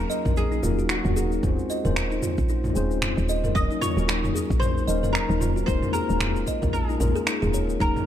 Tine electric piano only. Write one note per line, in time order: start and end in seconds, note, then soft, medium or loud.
0.00 0.62 F#3 medium
0.00 0.63 A#3 medium
0.00 0.64 C#4 medium
0.00 0.65 D#4 medium
0.00 0.66 A#4 medium
0.62 1.40 F#3 medium
0.62 1.40 A#3 medium
0.62 1.41 C#4 medium
0.62 1.41 D#4 medium
0.66 1.42 A#4 loud
1.42 1.81 G#3 medium
1.42 1.81 C4 medium
1.42 1.82 C#4 medium
1.42 1.82 F4 medium
1.42 1.82 C5 medium
1.83 2.72 G#3 medium
1.83 2.73 C4 medium
1.83 2.73 C#4 medium
1.83 2.74 F4 medium
1.87 2.74 C5 medium
2.73 3.52 G#3 loud
2.73 3.52 C4 medium
2.73 3.53 C#4 medium
2.73 3.53 F4 medium
2.78 3.54 C5 loud
3.55 3.93 F#3 medium
3.55 3.93 A#3 medium
3.55 3.93 C#4 medium
3.55 3.94 D#4 medium
3.55 3.94 A#4 medium
3.96 4.85 F#3 medium
3.96 4.86 A#3 medium
3.96 4.86 C#4 medium
3.96 4.86 D#4 medium
3.96 4.87 A#4 medium
4.86 5.64 F#3 medium
4.86 5.65 A#3 medium
4.86 5.65 C#4 medium
4.86 5.66 D#4 medium
4.90 5.66 A#4 loud
5.67 6.06 G#3 medium
5.67 6.06 A#3 medium
5.67 6.07 C#4 medium
5.67 6.07 F4 medium
5.67 6.07 A#4 medium
6.08 6.97 G#3 medium
6.08 6.97 A#3 medium
6.08 6.98 C#4 medium
6.08 6.99 F4 medium
6.12 6.99 A#4 medium
6.98 7.77 G#3 medium
6.98 7.77 A#3 medium
6.98 7.78 C#4 medium
6.98 7.78 F4 medium
7.03 7.79 A#4 loud
7.79 8.06 F#3 medium
7.79 8.06 A#3 medium
7.79 8.06 C#4 medium
7.79 8.06 D#4 medium
7.79 8.06 A#4 medium